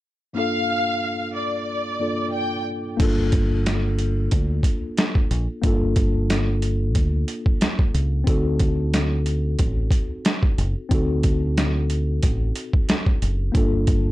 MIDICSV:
0, 0, Header, 1, 5, 480
1, 0, Start_track
1, 0, Key_signature, -2, "minor"
1, 0, Tempo, 659341
1, 264, Time_signature, 4, 2, 24, 8
1, 10278, End_track
2, 0, Start_track
2, 0, Title_t, "Violin section"
2, 0, Program_c, 0, 48
2, 264, Note_on_c, 0, 77, 107
2, 954, Note_off_c, 0, 77, 0
2, 987, Note_on_c, 0, 74, 73
2, 1676, Note_off_c, 0, 74, 0
2, 1694, Note_on_c, 0, 79, 79
2, 1914, Note_off_c, 0, 79, 0
2, 10278, End_track
3, 0, Start_track
3, 0, Title_t, "Tine electric piano"
3, 0, Program_c, 1, 4
3, 243, Note_on_c, 1, 43, 61
3, 253, Note_on_c, 1, 58, 58
3, 263, Note_on_c, 1, 62, 60
3, 272, Note_on_c, 1, 65, 53
3, 282, Note_on_c, 1, 69, 65
3, 388, Control_c, 1, 64, 127
3, 1429, Note_off_c, 1, 43, 0
3, 1434, Note_off_c, 1, 58, 0
3, 1439, Note_off_c, 1, 62, 0
3, 1444, Note_off_c, 1, 65, 0
3, 1449, Note_off_c, 1, 69, 0
3, 1452, Note_on_c, 1, 43, 53
3, 1457, Note_on_c, 1, 58, 44
3, 1462, Note_on_c, 1, 62, 44
3, 1467, Note_on_c, 1, 65, 44
3, 1472, Note_on_c, 1, 69, 53
3, 2152, Note_off_c, 1, 58, 0
3, 2161, Note_on_c, 1, 58, 74
3, 2166, Note_off_c, 1, 62, 0
3, 2174, Note_on_c, 1, 62, 72
3, 2178, Note_off_c, 1, 43, 0
3, 2179, Note_off_c, 1, 65, 0
3, 2187, Note_on_c, 1, 65, 74
3, 2188, Note_off_c, 1, 69, 0
3, 2193, Control_c, 1, 64, 0
3, 2200, Note_on_c, 1, 69, 85
3, 2324, Control_c, 1, 64, 127
3, 4063, Note_off_c, 1, 58, 0
3, 4070, Note_off_c, 1, 62, 0
3, 4076, Note_off_c, 1, 65, 0
3, 4082, Note_off_c, 1, 69, 0
3, 4088, Note_on_c, 1, 58, 80
3, 4101, Note_on_c, 1, 62, 67
3, 4114, Note_on_c, 1, 65, 75
3, 4127, Note_on_c, 1, 69, 88
3, 5987, Note_off_c, 1, 58, 0
3, 5993, Note_off_c, 1, 62, 0
3, 5999, Note_off_c, 1, 65, 0
3, 5999, Note_on_c, 1, 60, 73
3, 6006, Note_off_c, 1, 69, 0
3, 6012, Note_on_c, 1, 63, 65
3, 6025, Note_on_c, 1, 66, 67
3, 6032, Control_c, 1, 64, 0
3, 6038, Note_on_c, 1, 69, 88
3, 6180, Control_c, 1, 64, 127
3, 7902, Note_off_c, 1, 60, 0
3, 7909, Note_off_c, 1, 63, 0
3, 7915, Note_off_c, 1, 66, 0
3, 7922, Note_off_c, 1, 69, 0
3, 7928, Note_on_c, 1, 60, 77
3, 7941, Note_on_c, 1, 63, 62
3, 7954, Note_on_c, 1, 66, 67
3, 7966, Note_on_c, 1, 69, 80
3, 9826, Note_off_c, 1, 60, 0
3, 9833, Note_off_c, 1, 63, 0
3, 9839, Note_off_c, 1, 66, 0
3, 9843, Note_on_c, 1, 58, 75
3, 9846, Note_off_c, 1, 69, 0
3, 9855, Note_on_c, 1, 62, 72
3, 9868, Note_on_c, 1, 65, 73
3, 9871, Control_c, 1, 64, 0
3, 9881, Note_on_c, 1, 69, 82
3, 9993, Control_c, 1, 64, 127
3, 10278, Note_off_c, 1, 58, 0
3, 10278, Note_off_c, 1, 62, 0
3, 10278, Note_off_c, 1, 65, 0
3, 10278, Note_off_c, 1, 69, 0
3, 10278, End_track
4, 0, Start_track
4, 0, Title_t, "Fingered electric bass"
4, 0, Program_c, 2, 33
4, 2183, Note_on_c, 2, 31, 100
4, 3114, Note_off_c, 2, 31, 0
4, 3145, Note_on_c, 2, 38, 92
4, 3347, Note_off_c, 2, 38, 0
4, 3865, Note_on_c, 2, 34, 91
4, 3976, Note_off_c, 2, 34, 0
4, 4103, Note_on_c, 2, 31, 105
4, 5065, Note_off_c, 2, 31, 0
4, 5065, Note_on_c, 2, 38, 96
4, 5267, Note_off_c, 2, 38, 0
4, 5783, Note_on_c, 2, 37, 94
4, 5986, Note_off_c, 2, 37, 0
4, 6023, Note_on_c, 2, 38, 100
4, 6954, Note_off_c, 2, 38, 0
4, 6984, Note_on_c, 2, 33, 97
4, 7186, Note_off_c, 2, 33, 0
4, 7704, Note_on_c, 2, 30, 93
4, 7816, Note_off_c, 2, 30, 0
4, 7943, Note_on_c, 2, 38, 104
4, 8874, Note_off_c, 2, 38, 0
4, 8906, Note_on_c, 2, 33, 92
4, 9107, Note_off_c, 2, 33, 0
4, 9625, Note_on_c, 2, 30, 82
4, 9827, Note_off_c, 2, 30, 0
4, 9863, Note_on_c, 2, 31, 103
4, 10278, Note_off_c, 2, 31, 0
4, 10278, End_track
5, 0, Start_track
5, 0, Title_t, "Drums"
5, 2182, Note_on_c, 9, 36, 115
5, 2182, Note_on_c, 9, 42, 85
5, 2182, Note_on_c, 9, 49, 89
5, 2255, Note_off_c, 9, 36, 0
5, 2255, Note_off_c, 9, 42, 0
5, 2255, Note_off_c, 9, 49, 0
5, 2418, Note_on_c, 9, 42, 78
5, 2422, Note_on_c, 9, 36, 93
5, 2491, Note_off_c, 9, 42, 0
5, 2495, Note_off_c, 9, 36, 0
5, 2666, Note_on_c, 9, 42, 94
5, 2669, Note_on_c, 9, 38, 101
5, 2739, Note_off_c, 9, 42, 0
5, 2742, Note_off_c, 9, 38, 0
5, 2901, Note_on_c, 9, 42, 69
5, 2974, Note_off_c, 9, 42, 0
5, 3140, Note_on_c, 9, 42, 87
5, 3145, Note_on_c, 9, 36, 90
5, 3213, Note_off_c, 9, 42, 0
5, 3218, Note_off_c, 9, 36, 0
5, 3372, Note_on_c, 9, 36, 87
5, 3380, Note_on_c, 9, 42, 83
5, 3445, Note_off_c, 9, 36, 0
5, 3453, Note_off_c, 9, 42, 0
5, 3622, Note_on_c, 9, 42, 82
5, 3629, Note_on_c, 9, 38, 123
5, 3694, Note_off_c, 9, 42, 0
5, 3701, Note_off_c, 9, 38, 0
5, 3751, Note_on_c, 9, 36, 94
5, 3823, Note_off_c, 9, 36, 0
5, 3865, Note_on_c, 9, 42, 70
5, 3938, Note_off_c, 9, 42, 0
5, 4102, Note_on_c, 9, 36, 116
5, 4102, Note_on_c, 9, 42, 84
5, 4175, Note_off_c, 9, 36, 0
5, 4175, Note_off_c, 9, 42, 0
5, 4338, Note_on_c, 9, 42, 82
5, 4342, Note_on_c, 9, 36, 92
5, 4411, Note_off_c, 9, 42, 0
5, 4415, Note_off_c, 9, 36, 0
5, 4586, Note_on_c, 9, 42, 91
5, 4589, Note_on_c, 9, 38, 101
5, 4659, Note_off_c, 9, 42, 0
5, 4661, Note_off_c, 9, 38, 0
5, 4821, Note_on_c, 9, 42, 71
5, 4894, Note_off_c, 9, 42, 0
5, 5059, Note_on_c, 9, 42, 84
5, 5064, Note_on_c, 9, 36, 91
5, 5132, Note_off_c, 9, 42, 0
5, 5137, Note_off_c, 9, 36, 0
5, 5299, Note_on_c, 9, 42, 82
5, 5372, Note_off_c, 9, 42, 0
5, 5430, Note_on_c, 9, 36, 86
5, 5503, Note_off_c, 9, 36, 0
5, 5541, Note_on_c, 9, 42, 83
5, 5548, Note_on_c, 9, 38, 125
5, 5613, Note_off_c, 9, 42, 0
5, 5620, Note_off_c, 9, 38, 0
5, 5670, Note_on_c, 9, 36, 92
5, 5743, Note_off_c, 9, 36, 0
5, 5784, Note_on_c, 9, 42, 74
5, 5857, Note_off_c, 9, 42, 0
5, 6022, Note_on_c, 9, 36, 119
5, 6022, Note_on_c, 9, 42, 85
5, 6095, Note_off_c, 9, 36, 0
5, 6095, Note_off_c, 9, 42, 0
5, 6257, Note_on_c, 9, 42, 79
5, 6261, Note_on_c, 9, 36, 95
5, 6330, Note_off_c, 9, 42, 0
5, 6334, Note_off_c, 9, 36, 0
5, 6505, Note_on_c, 9, 42, 95
5, 6508, Note_on_c, 9, 38, 100
5, 6578, Note_off_c, 9, 42, 0
5, 6581, Note_off_c, 9, 38, 0
5, 6740, Note_on_c, 9, 42, 69
5, 6813, Note_off_c, 9, 42, 0
5, 6979, Note_on_c, 9, 42, 88
5, 6984, Note_on_c, 9, 36, 91
5, 7051, Note_off_c, 9, 42, 0
5, 7057, Note_off_c, 9, 36, 0
5, 7211, Note_on_c, 9, 36, 86
5, 7219, Note_on_c, 9, 42, 84
5, 7284, Note_off_c, 9, 36, 0
5, 7292, Note_off_c, 9, 42, 0
5, 7461, Note_on_c, 9, 42, 83
5, 7468, Note_on_c, 9, 38, 122
5, 7534, Note_off_c, 9, 42, 0
5, 7541, Note_off_c, 9, 38, 0
5, 7590, Note_on_c, 9, 36, 96
5, 7663, Note_off_c, 9, 36, 0
5, 7705, Note_on_c, 9, 42, 71
5, 7778, Note_off_c, 9, 42, 0
5, 7943, Note_on_c, 9, 36, 119
5, 7943, Note_on_c, 9, 42, 86
5, 8015, Note_off_c, 9, 36, 0
5, 8015, Note_off_c, 9, 42, 0
5, 8178, Note_on_c, 9, 42, 80
5, 8182, Note_on_c, 9, 36, 91
5, 8251, Note_off_c, 9, 42, 0
5, 8255, Note_off_c, 9, 36, 0
5, 8426, Note_on_c, 9, 42, 93
5, 8429, Note_on_c, 9, 38, 105
5, 8499, Note_off_c, 9, 42, 0
5, 8502, Note_off_c, 9, 38, 0
5, 8661, Note_on_c, 9, 42, 74
5, 8734, Note_off_c, 9, 42, 0
5, 8900, Note_on_c, 9, 42, 86
5, 8905, Note_on_c, 9, 36, 94
5, 8973, Note_off_c, 9, 42, 0
5, 8978, Note_off_c, 9, 36, 0
5, 9140, Note_on_c, 9, 42, 83
5, 9213, Note_off_c, 9, 42, 0
5, 9271, Note_on_c, 9, 36, 88
5, 9343, Note_off_c, 9, 36, 0
5, 9381, Note_on_c, 9, 42, 83
5, 9388, Note_on_c, 9, 38, 118
5, 9454, Note_off_c, 9, 42, 0
5, 9461, Note_off_c, 9, 38, 0
5, 9511, Note_on_c, 9, 36, 92
5, 9584, Note_off_c, 9, 36, 0
5, 9625, Note_on_c, 9, 42, 72
5, 9698, Note_off_c, 9, 42, 0
5, 9863, Note_on_c, 9, 36, 117
5, 9863, Note_on_c, 9, 42, 88
5, 9935, Note_off_c, 9, 36, 0
5, 9936, Note_off_c, 9, 42, 0
5, 10099, Note_on_c, 9, 42, 79
5, 10102, Note_on_c, 9, 36, 92
5, 10171, Note_off_c, 9, 42, 0
5, 10175, Note_off_c, 9, 36, 0
5, 10278, End_track
0, 0, End_of_file